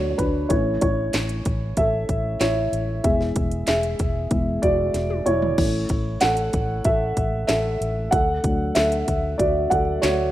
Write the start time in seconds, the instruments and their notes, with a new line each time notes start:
Already playing: fingered electric bass D2, upright piano F#3 A3 D4 F#4 C#5 D5
0.10 upright piano C#5
0.18 fingered electric bass D2, upright piano D4 B4, kick, closed hi-hat
0.49 fingered electric bass A1, upright piano E3 A3 C#4 E4 C#5, kick, closed hi-hat
0.81 fingered electric bass A1, upright piano E4 C#5, kick, closed hi-hat
1.13 fingered electric bass A1, snare, clap, closed hi-hat
1.29 closed hi-hat
1.45 fingered electric bass A1, kick, closed hi-hat
1.77 fingered electric bass A1, upright piano A4 E5, kick, closed hi-hat
2.09 fingered electric bass A1, kick, closed hi-hat
2.40 fingered electric bass A1, upright piano E4 C#5, snare, clap, closed hi-hat
2.73 fingered electric bass A1, closed hi-hat
3.04 fingered electric bass E1, upright piano E3 G#3 B3 G#4 E5, kick, closed hi-hat
3.21 snare
3.36 fingered electric bass E1, kick, closed hi-hat
3.51 closed hi-hat
3.67 fingered electric bass E1, upright piano G#4 E5, snare, clap, closed hi-hat
3.83 closed hi-hat
3.99 fingered electric bass E1, kick, closed hi-hat
4.31 fingered electric bass E1, upright piano E3 G#3 B3, kick, closed hi-hat
4.62 fingered electric bass E1, upright piano F#4 D5, kick, closed hi-hat
4.94 fingered electric bass E1, snare, closed hi-hat
5.10 high tom
5.26 fingered electric bass E1, upright piano E4 C#5, closed hi-hat, mid tom
5.42 floor tom
5.58 fingered electric bass A1, upright piano E3 A3 C#4, kick, crash
5.89 fingered electric bass A1, kick, closed hi-hat
6.21 fingered electric bass A1, upright piano A4 F#5, snare, clap, closed hi-hat
6.37 closed hi-hat
6.53 fingered electric bass A1, kick, closed hi-hat
6.84 fingered electric bass A1, upright piano A4 E5, kick, closed hi-hat
7.17 fingered electric bass A1, kick, closed hi-hat
7.47 fingered electric bass A1, upright piano A4 E5, snare, clap, closed hi-hat
7.81 fingered electric bass A1, closed hi-hat
8.11 fingered electric bass D2, upright piano A4 F#5, kick, closed hi-hat
8.43 fingered electric bass D2, upright piano F#3 A3 D4, kick, closed hi-hat
8.75 fingered electric bass D2, upright piano A4 E5, snare, clap, closed hi-hat
8.92 closed hi-hat
9.08 fingered electric bass D2, kick, closed hi-hat
9.38 fingered electric bass D2, upright piano F#4 D5, kick, closed hi-hat
9.70 fingered electric bass D2, upright piano A4 F#5, kick, closed hi-hat
10.02 fingered electric bass D2, upright piano F#4 C#5, snare, clap, closed hi-hat